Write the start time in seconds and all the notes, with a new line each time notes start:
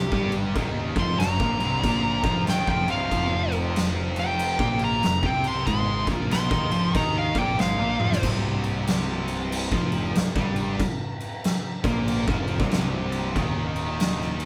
Already playing: C1 C2 G4
0.12 G1 G2 G3, kick
0.32 crash
0.55 D#1 D#2 D#3, kick, crash
0.95 F1 F2 F3, kick, crash
0.99 C6
1.19 F#1 F#2 F#3 A#5, snare, crash
1.40 A#1 A#2 A#3, kick
1.59 C1 C2 C3, crash
1.83 A#1 A#2 A#3, kick, crash
2.23 F1 F2 F3, kick, crash
2.47 D#1 D#2 D#3 G5, snare, crash
2.67 F1 F2 F3 G5, kick
2.87 C1 C2 C3, crash
2.91 F5
3.10 F1 F2 F3, kick, crash
3.52 crash
3.76 snare, crash
4.16 G5, crash
4.39 crash
4.59 A#1 A#2 A#3, kick
4.79 crash
4.84 A#5
5.03 F1 F2, snare, crash
5.23 C2 C3 C4 G5, kick
5.44 C6, crash
5.67 G#1 G#2 G#3 C6, kick, crash
6.07 A#1 A#2 A#3, kick, crash
6.30 B1 B2 B3 C6, snare, crash
6.50 D#2 D#3 D#4, kick, snare
6.71 F1 F2 F3, crash
6.94 D#2 D#3 D#4 A#5, kick, crash
7.19 F5
7.35 A#1 A#2 A#3, kick, crash
7.39 G5
7.58 G#1 G#2 G#3 F5, snare, crash
7.78 A#1 A#2 A#3
7.99 F1 F2 F3, high tom
8.12 snare
8.23 C1 C2 C3, kick, crash
8.64 crash
8.87 snare, crash
9.28 crash
9.52 crash
9.72 F1 F2 F3, kick
9.92 crash
10.15 C1 C2, snare, crash
10.35 G1 G2 G3, kick
10.56 crash
10.80 kick, crash
11.20 crash
11.44 snare, crash
11.84 A#1 A#2 A#3, kick, crash
12.08 crash
12.28 F1 F2 F3, kick
12.48 crash
12.59 C1 C2 C3, kick
12.71 snare, crash
13.12 crash
13.35 D#1 D#2 D#3, kick, crash
13.76 crash
14.00 snare, crash
14.21 snare
14.40 crash